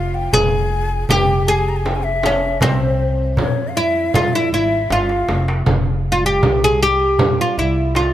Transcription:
Already playing: F1 F4 F5
0.15 G5
0.32 F1 G#4 G#5, darbuka dum, frame drum
0.70 darbuka ka
0.90 darbuka ka
1.09 F1 G4 G5, darbuka dum, frame drum
1.28 darbuka ka
1.47 G#4 A5
1.51 G#5
1.67 A#5, darbuka ka
1.77 G#5
1.86 G5, darbuka tek, frame drum
1.96 G#5
2.03 E5
2.23 C#4, darbuka tek, frame drum
2.42 darbuka ka
2.61 C2 C4 C5, darbuka dum, frame drum
2.81 darbuka ka
3.00 darbuka ka
3.19 darbuka ka
3.37 F2 C#5, darbuka dum, frame drum
3.68 F5
3.76 E4 E5, darbuka ka
3.96 darbuka ka
4.14 F2 F4 F5, frame drum, darbuka dum
4.28 F5
4.33 E4 E5, darbuka ka
4.52 G#1 E4 E5
4.71 darbuka ka
4.90 G1 F4 F5, darbuka tek, frame drum
5.09 darbuka ka
5.29 F1, darbuka tek, frame drum
5.48 darbuka ka
5.66 F1, frame drum, darbuka dum
5.86 darbuka ka
6.12 F4
6.26 G4
6.43 C2, darbuka dum, frame drum
6.64 G#4
6.83 G4
7.00 darbuka ka
7.19 F2, darbuka dum, frame drum
7.38 F4, darbuka ka
7.58 C2 E4
7.95 F4, darbuka tek, frame drum

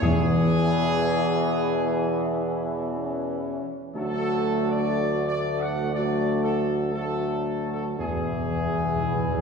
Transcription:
0.00 E2 B2 E3 B3 E4 G#4
2.96 C#4
3.94 D2 F#3 A3 D4 F#4 A4
4.70 D5
5.28 D5
5.60 F#5
5.93 F#3 A3 D4 F#4 D5
6.43 A4
6.94 F#3 A3 D4 F#4 A4
7.72 A4
7.99 E2 B2 E3 B3 E4 G#4
8.08 E2
8.16 E2
8.24 E2
8.32 E2
8.39 E2
8.47 E2
8.56 E2
8.63 E2
8.71 E2
8.78 E2
8.86 E2
8.95 E2
9.03 E2
9.11 E2
9.19 E2
9.28 E2
9.35 E2

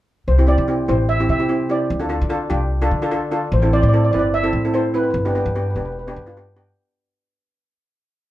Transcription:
0.28 C2 C5
0.38 C4 E4 G4
0.47 C4 E4 G4 D5
0.58 C3
0.68 C4 E4 G4
0.88 A1 C4 E4 G4 C5
1.09 E5
1.20 C4 E4 G4
1.29 C3 E5
1.39 C4 E4 G4
1.49 C4 E4 G4
1.69 C4 E4 G4 D5
1.90 D2
2.00 D4 F4 A4
2.09 D4 F4 A4
2.21 D3
2.29 D4 F4 A4
2.50 C2 D4 F4 G4
2.82 D4 F4 A4
2.91 D3
3.02 D4 F4 A4
3.11 D4 F4 A4
3.31 D4 F4 A4
3.52 A1 C5
3.62 C4 E4 A4
3.73 C4 E4 C5 D5
3.82 A2 D5
3.89 D5
3.93 C4 E4 A4 D5
4.04 D5
4.11 G1 C4 E4 B4 D5
4.19 D5
4.34 E5
4.43 C4 E4 A4
4.53 A2
4.65 C4 E4 A4
4.74 C4 E4 A4 C5
4.94 C4 E4 B4
5.04 B4
5.11 G1 B4
5.18 B4
5.25 B3 D4 G4 B4
5.33 B3 D4 G4 B4
5.40 B4
5.46 G2 B4
5.55 B3 D4 G4 B4
5.62 B4
5.70 B4
5.75 E1 B3 D4 G4 B4
5.85 B4
5.92 B4
5.99 B4
6.07 B3 D4 G4 B4
6.14 G2 B4
6.22 B4
6.26 B3 D4 F4 B4
6.37 B3 D4 G4 B4
6.56 B3 D4 G4

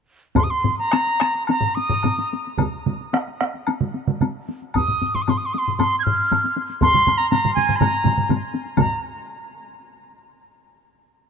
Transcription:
0.35 C6, taiko, taiko low-mid, taiko high, high woodblock
0.44 D#6
0.50 C6, taiko high
0.64 taiko low-mid, taiko high
0.79 A#5, taiko high
0.91 taiko rim, taiko high, high woodblock
1.07 taiko high
1.20 taiko rim, taiko high
1.35 taiko high
1.47 A#5, taiko high, high woodblock
1.61 taiko low-mid, taiko high
1.75 D#6, taiko high
1.90 taiko low-mid, taiko high
2.03 taiko low-mid, taiko high, high woodblock
2.19 taiko high
2.33 taiko high
2.47 taiko high
2.58 taiko, taiko mid, taiko high, high woodblock
2.74 taiko high
2.86 taiko mid, taiko high
3.01 taiko high
3.13 taiko rim, taiko high, high woodblock
3.27 taiko high
3.41 taiko rim, taiko high
3.54 taiko high
3.67 taiko high, high woodblock
3.81 taiko mid
3.95 taiko high
4.08 taiko mid
4.21 taiko mid, taiko high, high woodblock
4.49 taiko high
4.62 taiko high
4.74 D#6, taiko, taiko low-mid, taiko high, high woodblock
4.88 taiko low-mid, taiko high
5.02 taiko low-mid, taiko high
5.15 C6, taiko low-mid, taiko high
5.22 D#6
5.28 C6, taiko low-mid, taiko high, high woodblock
5.38 D#6, taiko high
5.46 C6
5.53 D#6, taiko high
5.58 C6
5.67 taiko low-mid, taiko high
5.77 C6, taiko low-mid, taiko high, high woodblock
5.94 taiko high
5.99 F6 G#6
6.07 taiko low-mid
6.19 taiko high
6.32 taiko low-mid, taiko high, high woodblock
6.44 taiko high
6.57 taiko high
6.70 taiko high
6.81 C6, taiko, taiko low-mid, taiko mid, taiko high, high woodblock
6.94 taiko low-mid, taiko mid, taiko high
7.07 taiko low-mid, taiko mid, taiko high, high woodblock
7.18 A#5, taiko high
7.30 A#5, taiko low-mid, taiko mid, taiko high, high woodblock
7.45 taiko low-mid, taiko mid, taiko high
7.55 G#5, taiko low-mid, taiko mid, taiko high
7.69 taiko low-mid, taiko mid, taiko high
7.76 A#5 C6
7.81 taiko low-mid, taiko mid, taiko high, high woodblock
7.93 taiko high
8.05 taiko low-mid, taiko mid, taiko high
8.17 taiko low-mid, taiko mid, taiko high
8.30 taiko low-mid, taiko mid, taiko high, high woodblock
8.54 taiko high
8.65 taiko high
8.77 A#5, taiko, taiko low-mid, taiko mid, taiko high, high woodblock

